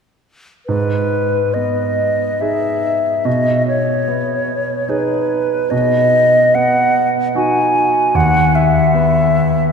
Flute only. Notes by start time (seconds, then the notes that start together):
0.66 B4
1.54 D#5
2.40 E5
3.25 D#5
3.68 C#5
4.89 B4
5.70 D#5
6.55 F#5
7.36 G#5
8.16 F#5
8.55 E5